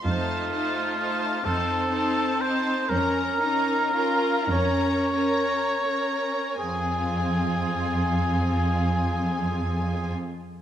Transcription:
0.04 1.27 F2 soft
0.04 1.41 A3 soft
0.04 0.50 D#4 soft
0.04 1.46 F4 medium
0.04 0.51 C5 soft
0.04 0.51 A5 soft
0.51 0.97 D#4 soft
0.51 0.97 C5 soft
0.51 0.98 A5 soft
0.98 1.43 D#4 soft
0.98 1.43 C5 soft
0.98 1.44 A5 soft
1.45 2.71 F2 soft
1.45 2.90 C4 soft
1.45 1.90 D#4 soft
1.45 2.42 A4 medium
1.45 1.90 C5 soft
1.45 1.91 A5 soft
1.91 2.39 D#4 soft
1.91 2.39 C5 soft
1.91 2.40 A5 soft
2.40 2.89 D#4 soft
2.40 2.89 C5 soft
2.40 2.91 C5 medium
2.40 2.90 A5 soft
2.90 4.29 F2 soft
2.90 3.40 C#4 soft
2.90 4.51 A#4 medium
2.90 3.39 A#4 soft
2.90 3.41 A#5 soft
3.40 3.93 C#4 soft
3.40 3.94 D#4 soft
3.40 3.93 A#4 soft
3.40 3.94 A#5 soft
3.94 4.50 C#4 soft
3.94 4.51 F4 medium
3.94 4.50 A#4 soft
3.94 4.50 A#5 soft
4.51 6.34 F2 soft
4.51 5.14 C#4 soft
4.51 5.50 C#4 soft
4.51 5.13 A#4 soft
4.51 6.55 C#5 medium
4.51 5.14 A#5 soft
5.15 5.85 C#4 soft
5.15 5.85 A#4 soft
5.15 5.86 A#5 soft
5.87 6.57 C#4 soft
5.87 6.57 A#4 soft
5.87 6.58 A#5 soft
6.58 10.14 F2 soft
6.58 10.13 C4 soft
6.58 10.13 F4 soft
6.58 10.12 G#4 soft
6.58 10.13 G#5 soft

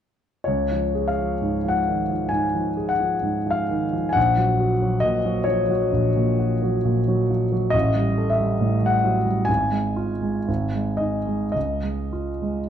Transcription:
0.44 2.29 C#2 soft
0.44 1.09 C#5 medium
0.71 1.09 F3 soft
0.95 1.33 G#4 soft
1.08 1.71 F5 medium
1.18 1.56 F3 soft
1.41 1.79 G#2 soft
1.64 2.01 F3 soft
1.68 2.31 F#5 medium
1.87 2.10 D#3 soft
2.09 2.45 F3 soft
2.29 2.68 G#2 soft
2.29 2.90 G#5 medium
2.54 2.91 F3 soft
2.77 3.14 G#4 soft
2.89 3.53 F#5 medium
2.99 3.37 F3 soft
3.22 3.60 G#2 soft
3.46 3.84 F3 soft
3.51 4.07 F5 medium
3.69 3.93 D#3 soft
3.93 4.16 F3 soft
4.09 5.01 F#5 medium
4.09 4.16 G#5 medium
4.16 5.89 A#1 soft
4.37 4.73 F#3 soft
4.60 4.95 F#4 soft
4.82 5.16 F#3 soft
5.00 5.38 A#2 soft
5.00 5.46 D#5 medium
5.25 5.61 F#3 soft
5.44 5.70 F3 soft
5.44 7.28 C#5 medium
5.69 6.07 F#3 soft
5.93 7.70 A#1 soft
6.16 6.54 A#2 soft
6.39 6.76 F#4 soft
6.62 6.99 F#3 soft
6.85 7.21 A#2 soft
7.08 7.43 F#3 soft
7.30 7.52 F3 soft
7.52 7.74 F#3 soft
7.70 9.44 A1 soft
7.70 8.31 D#5 medium
7.96 8.31 G3 soft
8.18 8.53 A4 soft
8.30 8.89 E5 medium
8.40 8.74 G3 soft
8.61 8.95 A2 soft
8.82 9.17 G3 soft
8.82 9.46 F#5 medium
9.04 9.26 F#3 soft
9.26 9.48 G3 soft
9.45 10.45 G#1 soft
9.45 10.99 G#5 medium
9.72 10.12 G#3 soft
9.96 10.37 F4 soft
10.22 10.48 G#3 soft
10.48 11.52 G#1 soft
10.74 11.16 G#3 soft
10.97 11.44 D#4 soft
10.97 11.50 D#5 medium
11.27 11.55 G#3 soft
11.52 12.69 C#2 soft
11.52 12.69 D#5 medium
11.83 12.30 G#3 soft
12.12 12.59 F4 soft
12.42 12.69 G#3 soft

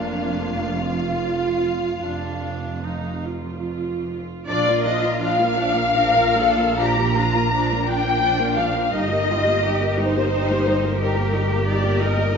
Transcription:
0.00 2.03 F1 medium
0.00 2.03 F2 medium
0.00 0.73 A#3 medium
0.00 0.73 D4 medium
0.00 3.26 F4 medium
0.00 3.25 F5 medium
0.82 2.00 F4 medium
2.04 4.23 F1 medium
2.04 4.23 F2 medium
2.04 2.86 D4 medium
2.86 3.26 D#4 medium
3.25 4.48 F4 medium
4.48 8.89 A#1 medium
4.48 4.66 F3 medium
4.48 4.66 D4 medium
4.48 5.54 F4 medium
4.48 4.66 D5 medium
4.48 4.84 D5 loud
4.67 4.85 A#3 medium
4.67 4.86 F4 medium
4.67 4.86 A#4 medium
4.86 5.04 F3 medium
4.86 5.04 D4 medium
4.86 5.04 D5 medium
4.86 5.21 D#5 medium
5.03 5.21 A#3 medium
5.03 5.21 F4 medium
5.03 5.23 A#4 medium
5.21 5.38 F3 medium
5.21 5.38 D4 medium
5.21 5.39 D5 medium
5.21 6.76 F5 loud
5.39 5.58 A#3 medium
5.39 5.57 F4 medium
5.39 5.58 A#4 medium
5.57 5.76 F3 medium
5.57 5.76 D4 medium
5.57 5.97 D4 medium
5.57 5.76 D5 medium
5.74 5.95 A#3 medium
5.74 5.95 F4 medium
5.74 5.96 A#4 medium
5.95 6.15 F3 medium
5.95 6.15 D4 medium
5.95 6.38 A#4 medium
5.95 6.16 D5 medium
6.16 6.37 A#3 medium
6.16 6.38 F4 medium
6.16 6.38 A#4 medium
6.37 6.58 F3 medium
6.37 6.58 D4 medium
6.37 6.80 A4 medium
6.37 6.59 D5 medium
6.58 6.79 A#3 medium
6.58 6.78 F4 medium
6.58 6.80 A#4 medium
6.77 6.96 F3 medium
6.77 6.96 D4 medium
6.77 7.18 G4 medium
6.77 6.97 D5 medium
6.77 7.89 A#5 medium
6.97 7.16 A#3 medium
6.97 7.17 F4 medium
6.97 7.18 A#4 medium
7.16 7.35 F3 medium
7.16 7.36 D4 medium
7.16 7.54 F4 medium
7.16 7.35 D5 medium
7.35 7.54 A#3 medium
7.35 7.54 F4 medium
7.35 7.53 A#4 medium
7.53 7.70 F3 medium
7.53 7.70 D4 medium
7.53 8.90 D4 medium
7.53 7.70 D5 medium
7.71 7.89 A#3 medium
7.71 7.89 F4 medium
7.71 7.89 A#4 medium
7.88 8.06 F3 medium
7.88 8.06 D4 medium
7.88 8.07 D5 medium
7.88 8.58 G5 loud
8.05 8.23 A#3 medium
8.05 8.23 F4 medium
8.05 8.23 A#4 medium
8.22 8.39 F3 medium
8.22 8.39 D4 medium
8.22 8.39 D5 medium
8.40 8.58 A#3 medium
8.40 8.57 F4 medium
8.40 8.58 A#4 medium
8.57 8.75 F3 medium
8.57 8.75 D4 medium
8.57 8.75 D5 medium
8.57 8.93 F5 medium
8.74 8.93 A#3 medium
8.74 8.93 F4 medium
8.74 8.92 A#4 medium
8.92 12.37 G1 medium
8.92 9.09 G3 medium
8.92 9.27 D#4 medium
8.92 9.09 D#4 medium
8.92 9.10 G4 medium
8.92 9.98 D#5 loud
9.11 9.28 A#3 medium
9.11 9.28 G4 medium
9.11 9.29 A#4 medium
9.28 9.46 G3 medium
9.28 9.46 D#4 medium
9.28 9.63 F4 medium
9.28 9.46 G4 medium
9.46 9.63 A#3 medium
9.46 9.63 G4 medium
9.46 9.64 A#4 medium
9.63 9.79 G3 medium
9.63 9.79 D#4 medium
9.63 9.98 G4 medium
9.63 9.81 G4 medium
9.81 9.98 A#3 medium
9.81 9.98 G4 medium
9.81 9.98 A#4 medium
9.98 10.15 G3 medium
9.98 10.15 D#4 medium
9.98 11.00 D#4 medium
9.98 10.16 G4 medium
9.98 11.01 C5 loud
10.16 10.32 A#3 medium
10.16 10.32 G4 medium
10.16 10.33 A#4 medium
10.33 10.49 G3 medium
10.33 10.48 D#4 medium
10.33 10.49 G4 medium
10.51 10.67 A#3 medium
10.51 10.67 G4 medium
10.51 10.68 A#4 medium
10.68 10.84 G3 medium
10.68 10.84 D#4 medium
10.68 10.84 G4 medium
10.84 11.01 A#3 medium
10.84 11.01 G4 medium
10.84 11.01 A#4 medium
11.00 11.16 G3 medium
11.00 11.15 D#4 medium
11.00 11.98 G4 medium
11.00 11.17 G4 medium
11.00 11.67 A#4 medium
11.17 11.33 A#3 medium
11.17 11.33 G4 medium
11.17 11.35 A#4 medium
11.33 11.49 G3 medium
11.33 11.49 D#4 medium
11.33 11.51 G4 medium
11.50 11.66 A#3 medium
11.50 11.67 G4 medium
11.50 11.67 A#4 medium
11.66 11.82 G3 medium
11.66 11.82 D#4 medium
11.66 11.83 G4 medium
11.66 11.99 D5 medium
11.83 12.00 A#3 medium
11.83 12.00 G4 medium
11.83 12.01 A#4 medium
12.01 12.18 G3 medium
12.01 12.18 D#4 medium
12.01 12.18 G4 medium
12.01 12.35 A#4 medium
12.01 12.37 D#5 medium
12.18 12.35 A#3 medium
12.18 12.35 G4 medium
12.18 12.35 A#4 medium

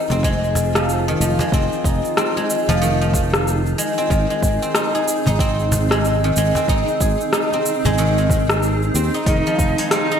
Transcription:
0.00 1.07 D#3 medium
0.00 0.74 F3 medium
0.00 0.23 G#3 medium
0.00 0.11 C4 medium
0.00 1.85 D#4 medium
0.00 10.20 D#4 medium
0.00 5.17 F4 medium
0.00 10.20 G#4 medium
0.00 1.03 C5 medium
0.10 1.14 F1 medium
0.10 1.53 C4 medium
0.10 cajon bass medium
0.10 cajon slap medium
0.10 cabasa soft
0.23 1.09 G#3 medium
0.23 kick medium
0.23 cabasa soft
0.44 cabasa soft
0.55 cajon bass medium
0.55 cabasa medium
0.75 1.09 F3 medium
0.75 cross-stick medium
0.75 cabasa soft
0.89 cabasa soft
1.08 2.80 D#3 medium
1.08 cabasa soft
1.20 1.34 F1 medium
1.20 2.68 F3 medium
1.20 cabasa medium
1.39 2.36 G#3 medium
1.39 cajon bass medium
1.39 cajon slap medium
1.39 cabasa soft
1.52 1.66 F1 medium
1.52 2.17 C4 medium
1.52 kick loud
1.52 cabasa soft
1.72 cabasa soft
1.84 1.99 F1 medium
1.84 4.56 D#4 medium
1.84 kick loud
1.84 cabasa medium
2.05 cabasa soft
2.17 3.97 C4 medium
2.17 cross-stick medium
2.17 cabasa soft
2.37 2.87 G#3 medium
2.37 cajon slap soft
2.37 cabasa soft
2.50 cabasa medium
2.68 3.73 F1 medium
2.68 2.87 F3 loud
2.68 cajon bass medium
2.68 cajon slap medium
2.68 cabasa soft
2.82 4.09 D#3 medium
2.82 cabasa soft
3.01 4.16 F3 medium
3.01 cabasa soft
3.14 cajon bass medium
3.14 kick loud
3.14 cabasa medium
3.34 cross-stick medium
3.34 cabasa soft
3.48 cabasa soft
3.66 cabasa soft
3.78 4.16 G#3 medium
3.78 cabasa medium
3.98 4.62 C4 medium
3.98 cabasa soft
4.10 4.25 G#1 medium
4.10 6.23 D#3 medium
4.10 10.20 C4 medium
4.10 kick loud
4.10 cabasa soft
4.30 5.91 G#3 medium
4.30 cabasa soft
4.42 4.57 G#1 medium
4.42 kick loud
4.42 cabasa medium
4.62 5.40 C4 medium
4.62 cabasa soft
4.75 5.27 D#4 medium
4.75 cross-stick medium
4.75 cabasa soft
4.95 7.01 G#4 medium
4.95 cabasa soft
5.08 cabasa medium
5.26 6.31 G#1 medium
5.26 6.69 D#4 medium
5.26 cajon bass medium
5.26 cajon slap medium
5.26 cabasa soft
5.39 6.56 C4 loud
5.39 kick loud
5.39 cabasa soft
5.59 cabasa soft
5.72 cajon bass loud
5.72 cabasa medium
5.91 6.25 G#3 medium
5.91 cross-stick medium
5.91 cabasa soft
6.05 cabasa soft
6.24 7.97 D#3 medium
6.24 cabasa soft
6.36 6.51 G#1 medium
6.36 7.84 G#3 medium
6.36 cabasa medium
6.55 7.53 C4 medium
6.55 cajon bass medium
6.55 cajon slap medium
6.55 cabasa soft
6.68 6.83 G#1 medium
6.68 7.34 D#4 loud
6.68 kick loud
6.68 cabasa soft
6.88 cabasa soft
7.01 7.15 G#1 medium
7.01 9.29 G#4 medium
7.01 kick loud
7.01 cabasa medium
7.21 cabasa soft
7.33 9.14 D#4 medium
7.33 cross-stick medium
7.33 cabasa soft
7.52 8.95 C4 medium
7.52 cajon slap soft
7.52 cabasa soft
7.66 cabasa medium
7.85 8.89 G#1 medium
7.85 8.03 G#3 loud
7.85 cajon bass medium
7.85 cajon slap medium
7.85 cabasa soft
7.98 9.26 D#3 medium
7.98 cabasa soft
8.18 9.32 G#3 medium
8.18 cabasa soft
8.30 kick loud
8.30 cajon bass medium
8.30 cabasa medium
8.50 cross-stick medium
8.50 cabasa soft
8.63 cabasa soft
8.82 cabasa soft
8.94 9.08 D#2 medium
8.94 9.91 C4 medium
8.94 cabasa medium
9.14 10.11 D#4 medium
9.14 cabasa soft
9.26 9.41 F1 medium
9.26 10.20 D#3 medium
9.26 9.87 D#4 loud
9.26 kick loud
9.26 open hi-hat soft
9.26 cabasa soft
9.46 10.20 F3 medium
9.46 10.20 F4 medium
9.46 cabasa soft
9.59 9.73 F1 medium
9.59 kick loud
9.59 cabasa medium
9.78 10.20 G#3 medium
9.78 open hi-hat medium
9.78 cabasa soft
9.91 10.20 C4 medium
9.91 10.20 D#4 loud
9.91 cross-stick medium
9.91 open hi-hat soft
9.91 cabasa soft
10.11 10.20 D#4 medium
10.11 cabasa soft

